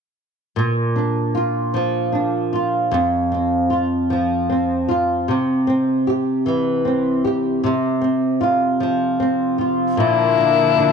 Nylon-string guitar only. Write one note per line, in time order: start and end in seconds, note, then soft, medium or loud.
0.56 2.92 A#2 soft
0.96 2.11 D4 soft
1.35 2.52 F4 soft
1.74 4.10 F3 soft
2.12 2.99 D4 soft
2.53 3.70 F4 soft
2.91 5.27 F2 medium
3.32 4.49 C4 soft
3.70 4.87 F4 soft
4.10 5.35 F3 soft
4.49 5.67 C4 soft
4.89 5.35 F4 soft
5.28 7.62 C3 soft
5.67 6.84 C4 soft
6.07 7.23 G4 soft
6.46 7.71 E3 soft
6.85 8.01 C4 soft
7.25 7.71 G4 soft
7.64 9.97 C3 medium
8.01 9.19 C4 soft
8.41 9.58 F4 soft
8.80 10.92 F3 soft
9.20 10.05 C4 soft
9.58 10.92 F4 soft
9.97 10.92 A#2 medium
10.38 10.92 A#3 soft
10.77 10.92 D4 soft